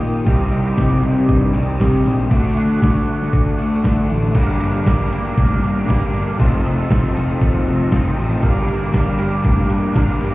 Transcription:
Already playing: overdriven electric guitar D#3 A#3 D#4 G4, tonewheel organ A#4 D#5 G5 D#6
0.00 picked electric bass A#2, closed hi-hat
0.24 picked electric bass C2, overdriven electric guitar C3 D#3 G3 C4 D#4 G4, tonewheel organ C5 D#5 D#6, kick, closed hi-hat
0.51 picked electric bass C2, closed hi-hat
0.77 picked electric bass C2, kick, snare, closed hi-hat
1.03 picked electric bass C3, closed hi-hat
1.29 picked electric bass G2, kick, closed hi-hat
1.53 picked electric bass C2, overdriven electric guitar C3 D#3 G3 C4 G4, closed hi-hat
1.78 overdriven electric guitar C3 D#3 G3 C4 G4, picked electric bass C3, kick, snare, closed hi-hat
2.04 picked electric bass A#1, snare, closed hi-hat
2.29 picked electric bass D2, overdriven electric guitar D3 A3 D4 F#4, tonewheel organ A4 D5 F#5 D6, kick, closed hi-hat
2.55 picked electric bass D2, closed hi-hat
2.82 picked electric bass D2, kick, snare, closed hi-hat
3.08 closed hi-hat
3.22 snare
3.33 picked electric bass D2, kick, closed hi-hat
3.57 overdriven electric guitar D3 A3 D4 F#4, closed hi-hat
3.83 picked electric bass D2, overdriven electric guitar D3 A3 D4 F#4, kick, snare, closed hi-hat
4.09 picked electric bass A1, snare, closed hi-hat
4.33 picked electric bass G1, overdriven electric guitar G2 D3 G3 A#3 D4 A#4, tonewheel organ A#4 F5 G5 D6, kick, closed hi-hat, crash, tambourine
4.60 picked electric bass G1, overdriven electric guitar A#3 D4 A#4, closed hi-hat
4.72 tambourine
4.84 picked electric bass G1, overdriven electric guitar G3 A#3 D4 A#4, kick, snare, closed hi-hat, tambourine
5.00 closed hi-hat
5.11 picked electric bass G1, overdriven electric guitar G3 A#3 D4 A#4, closed hi-hat, tambourine
5.37 picked electric bass F1, kick, closed hi-hat, tambourine
5.50 tambourine
5.62 picked electric bass G1, overdriven electric guitar A#3 D4 A#4, closed hi-hat, tambourine
5.75 tambourine
5.86 picked electric bass G1, overdriven electric guitar G2 D3 G3 A#3 D4 A#4, kick, closed hi-hat, tambourine
5.90 snare
6.02 closed hi-hat
6.12 picked electric bass G1, overdriven electric guitar G3 A#3 D4 A#4, closed hi-hat, tambourine
6.26 closed hi-hat, tambourine
6.37 picked electric bass F1, overdriven electric guitar F3 C4 D#4 A4, tonewheel organ C5 A5 D#6, kick, closed hi-hat, tambourine
6.64 picked electric bass F1, overdriven electric guitar C4 D#4 A4, closed hi-hat, tambourine
6.77 tambourine
6.88 picked electric bass F1, overdriven electric guitar F3 C4 D#4 A4, kick, snare, closed hi-hat, tambourine
7.15 picked electric bass F1, overdriven electric guitar C4 D#4 A4, closed hi-hat, tambourine
7.40 picked electric bass D#2, kick, closed hi-hat, tambourine
7.53 tambourine
7.66 picked electric bass F1, overdriven electric guitar C4 D#4 A4, closed hi-hat, tambourine
7.78 tambourine
7.91 picked electric bass F1, overdriven electric guitar F3 C4 D#4 A4, kick, snare, closed hi-hat, tambourine
8.16 picked electric bass A1, overdriven electric guitar C4 D#4 A4, closed hi-hat, tambourine
8.29 closed hi-hat, tambourine
8.41 picked electric bass G1, overdriven electric guitar G2 D3 G3 A#3 D4 A#4, tonewheel organ A#4 G5 D6, kick, closed hi-hat, tambourine
8.67 picked electric bass G1, overdriven electric guitar A#3 D4 A#4, closed hi-hat, tambourine
8.79 tambourine
8.92 picked electric bass G1, overdriven electric guitar G3 A#3 D4 A#4, kick, snare, closed hi-hat, tambourine
9.06 closed hi-hat
9.18 picked electric bass G1, overdriven electric guitar G3 A#3 D4 A#4, closed hi-hat, tambourine
9.44 picked electric bass F1, kick, closed hi-hat, tambourine
9.56 tambourine
9.69 picked electric bass G1, overdriven electric guitar A#3 D4 A#4, closed hi-hat, tambourine
9.82 tambourine
9.94 picked electric bass G1, overdriven electric guitar G2 D3 G3 A#3 D4 A#4, kick, snare, closed hi-hat, tambourine
10.08 closed hi-hat
10.19 picked electric bass G1, overdriven electric guitar G3 A#3 D4 A#4, snare, closed hi-hat, tambourine

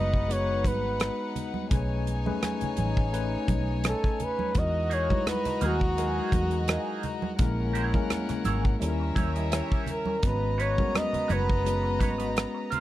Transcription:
Already playing: fingered electric bass F#1, tine electric piano G#3 B3 D#4 F#4 B4, violin section D#4 B4 F#5, flugelhorn D#5
0.14 kick
0.28 tine electric piano G#3 B3 D#4 F#4 B4, flugelhorn C#5, closed hi-hat, muted conga
0.64 fingered electric bass G#1, flugelhorn B4, kick, closed hi-hat, high conga
1.00 cross-stick, closed hi-hat, muted conga
1.36 closed hi-hat, muted conga, low conga
1.54 high conga
1.70 fingered electric bass B1, tine electric piano A3 C#4 D#4 G#4 B4, violin section D#4 C#5 G#5, kick, closed hi-hat, low conga
2.07 closed hi-hat, muted conga
2.26 tine electric piano A3 C#4 D#4 G#4 B4, high conga
2.43 cross-stick, closed hi-hat, high conga
2.61 muted fingered electric bass stroke, closed hi-hat, low conga
2.77 fingered electric bass A1, closed hi-hat, high conga
2.97 kick
3.12 tine electric piano A3 C#4 D#4 B4 G#5, closed hi-hat
3.48 fingered electric bass B1, kick, closed hi-hat, high conga
3.84 cross-stick, closed hi-hat, high conga
3.89 flugelhorn A4
4.04 kick
4.20 closed hi-hat, muted conga, low conga
4.24 flugelhorn B4
4.39 high conga
4.54 fingered electric bass E2, tine electric piano G#3 D#4 E4 F#4 A#4, violin section F#4 D#5 A#5, kick, closed hi-hat, low conga
4.59 flugelhorn D#5
4.90 clean electric guitar A#3 D#4 G#4, flugelhorn C#5, closed hi-hat
5.09 tine electric piano G#3 D#4 E4 F#4 B4, kick, high conga
5.26 flugelhorn B4, muted clean electric guitar stroke, cross-stick, closed hi-hat, muted conga, high conga
5.45 muted fingered electric bass stroke, muted clean electric guitar stroke, cross-stick, closed hi-hat, low conga
5.61 fingered electric bass D#2, clean electric guitar A#3 D#4 G#4, closed hi-hat, high conga
5.66 flugelhorn F#4
5.81 muted clean electric guitar stroke, kick
5.97 tine electric piano F#3 D#4 F#4 G#4 A#4, clean electric guitar A#3 D#4 G#4, closed hi-hat, muted conga
6.04 tine electric piano G#3
6.32 fingered electric bass E2, kick, closed hi-hat, muted conga, high conga
6.51 muted clean electric guitar stroke, closed hi-hat
6.68 clean electric guitar A#3 D#4 G#4, cross-stick, closed hi-hat
7.03 muted clean electric guitar stroke, closed hi-hat, low conga
7.22 muted clean electric guitar stroke, high conga
7.39 fingered electric bass A#1, tine electric piano G#3 A#3 C#4 E4 A#4, violin section C#4 A#4 F#5, kick, closed hi-hat, low conga
7.73 clean electric guitar E4 G#4 C#5, closed hi-hat, muted conga
7.93 tine electric piano G#3 A#3 C#4 E4 A#4, kick, high conga
8.10 muted clean electric guitar stroke, cross-stick, closed hi-hat, high conga
8.29 muted clean electric guitar stroke, muted fingered electric bass stroke, cross-stick, closed hi-hat, low conga
8.45 fingered electric bass G#1, clean electric guitar E4 G#4 C#5, closed hi-hat, muted conga, high conga
8.65 muted clean electric guitar stroke, kick
8.80 fingered electric bass D#2, tine electric piano D#3 G3 C#4 E4 A4, violin section C#4 A#4 E5, muted clean electric guitar stroke, closed hi-hat, muted conga
8.89 tine electric piano A#4
9.00 muted clean electric guitar stroke
9.16 fingered electric bass D#2, clean electric guitar E4 G4 C#5, kick, closed hi-hat, muted conga, high conga
9.36 clean electric guitar E4 G4 D#5, closed hi-hat
9.51 clean electric guitar E4 G4 C#5, cross-stick, closed hi-hat, muted conga
9.72 kick
9.87 muted clean electric guitar stroke, closed hi-hat, muted conga, low conga
9.91 flugelhorn A#4
10.05 muted clean electric guitar stroke, high conga
10.23 fingered electric bass G#1, tine electric piano G#3 B3 C#4 F#4 B4, violin section B3 D#5 A#5, flugelhorn B4, kick, closed hi-hat, low conga
10.58 clean electric guitar F#4 B4 C#5, flugelhorn C#5, closed hi-hat
10.77 tine electric piano G#3 B3 C#4 F#4 A#4, kick, high conga
10.94 flugelhorn D#5, muted clean electric guitar stroke, cross-stick, closed hi-hat, high conga
11.13 muted clean electric guitar stroke, muted fingered electric bass stroke, closed hi-hat, low conga
11.28 fingered electric bass F#1, clean electric guitar F#4 B4 C#5, closed hi-hat, muted conga, high conga
11.33 flugelhorn B4
11.48 muted clean electric guitar stroke, kick
11.64 tine electric piano G#3 B3 C#4 F#4 B4, muted clean electric guitar stroke, closed hi-hat, muted conga
11.83 muted clean electric guitar stroke
12.00 fingered electric bass G#1, clean electric guitar F#4 B4 C#5, kick, closed hi-hat, high conga
12.18 clean electric guitar F#4 B4 D#5, closed hi-hat
12.35 muted clean electric guitar stroke, cross-stick, closed hi-hat, muted conga
12.54 muted clean electric guitar stroke
12.70 clean electric guitar F#4 B4 C#5, closed hi-hat, low conga

